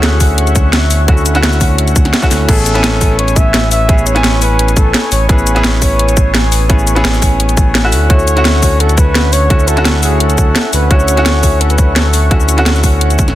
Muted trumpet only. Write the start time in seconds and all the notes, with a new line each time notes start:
Already playing: G#4
2.49 A4
3.19 C#5
3.36 E5
3.71 E5
4.07 C#5
4.42 B4
4.77 A4
5.12 C#5
5.29 B4
5.82 C#5
8.10 C#5
8.80 A4
8.98 B4
9.33 C#5
9.68 A4
10.03 G#4
10.21 A4
10.73 B4
10.91 C#5
11.61 A4
11.70 B4
11.96 A4